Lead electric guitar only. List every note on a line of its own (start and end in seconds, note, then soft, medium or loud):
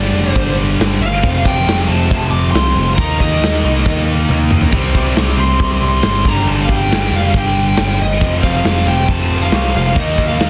0.00 0.33 D5 medium
0.33 0.56 C5 medium
1.02 1.47 F5 loud
1.46 1.87 G5 loud
1.88 2.33 A5 loud
2.31 2.51 D6 loud
2.51 2.94 C6 loud
2.95 3.19 A#5 loud
3.19 4.03 D#5 medium
5.40 5.83 C6 loud
5.85 6.24 C6 loud
6.28 6.49 A#5 loud
6.47 6.63 A5 loud
6.62 6.69 F5 medium
6.71 7.15 G5 loud
7.16 7.37 F5 loud
7.38 8.04 G5 loud
8.01 8.42 D#5 medium
8.42 8.88 F5 loud
8.88 9.10 G5 loud
9.10 9.43 A5 loud
9.42 9.75 F5 medium
9.76 9.98 F5 medium
9.98 10.27 D#5 loud
10.28 10.50 F5 medium